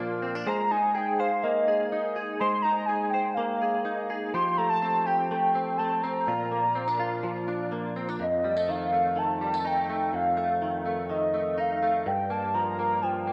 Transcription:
Already playing: A#2 F3 D4 F4 A#4
0.00 A#3
0.22 C4
0.35 D4
0.47 G#3 C5 A#5
0.71 D#4 G#5
0.95 G#4 G5
1.19 C5 F5
1.43 A#3 D#5
1.68 G#4
1.92 D#4
2.16 G#4
2.39 G#3 C5 C6
2.62 D#4 A#5
2.86 G#4 G#5
3.10 G5
3.14 C5
3.34 A#3 F5
3.62 G#4
3.85 D#4
4.10 G#4
4.33 F3 G4 C6
4.57 A3 A#5
4.69 A5
4.82 C4
5.06 G4 G5
5.31 A3
5.55 C4
5.78 A3 A5
6.02 C4 A#5
6.27 A#2 F4
6.52 A#3
6.75 C4
6.88 D4
6.99 F4
7.23 F3
7.48 D4
7.72 A#3
7.96 C4
8.09 D4
8.20 F2 D#5
8.44 G3
8.57 A3
8.68 D#3 F5
8.92 A3
9.16 D#3 A5
9.41 G3
9.54 A3
9.65 D#4 G5
9.89 A3
10.13 F2 F5
10.37 A3
10.62 D#3
10.86 A3
11.10 D#3 D#5
11.34 A3
11.58 D#4 F5
11.83 A3
12.06 G2 G5
12.30 A#3 A5
12.54 F3 A#5
12.79 A#3
13.02 F3 G5
13.27 A#3

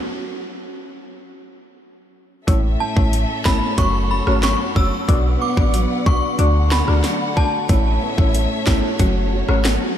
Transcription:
Already playing: F#3 F#4
2.47 A1 A2 A3 C#4 E4 A4 C#5 E5, kick, closed hi-hat
2.80 C#4 A5
2.96 A1 A3 C#4 E4 C#5, kick
3.13 A3, closed hi-hat
3.45 G#1 A3 C#4 E4 C#5 B5, kick, snare
3.78 F#1 F#2 F#3 A3 C#4 F#4 C#5 C#6, kick, closed hi-hat
4.11 C#4 B5
4.27 G#1 A3 C#4 F#4 C#5, cross-stick
4.43 F#3 C#6, snare, closed hi-hat
4.76 F#1 A3 C#4 F#4 C#5 E6, kick
5.08 B1 B2 B3 D4 F#4 B4 D5 F#5, kick, closed hi-hat
5.41 B3 D6
5.57 A1 B3 D4 F#4 D5, kick
5.74 F#3, closed hi-hat
6.06 B1 B3 D4 F#4 D5 C#6, kick
6.39 D2 D3 A3 D4 F#4 A4 D5 F#5, closed hi-hat
6.72 D4 B5, snare
6.87 D2 A3 D4 F#4 D5, cross-stick
7.04 F#3, snare, closed hi-hat
7.36 A3 D4 F#4 D5 A5, kick
7.69 A1 A2 A3 C#4 E4 C#5 E5, kick, closed hi-hat
8.02 B3
8.18 A1 A3 C#4 E4 C#5, kick
8.35 A3, closed hi-hat
8.67 G#1 A3 C#4 E4 C#5, kick, snare
8.99 F#1 F#3 A3 C#4 F#4 C#5, kick, closed hi-hat
9.33 F#4
9.49 G#1 A3 C#4 F#4 C#5, cross-stick
9.65 A3, snare, closed hi-hat

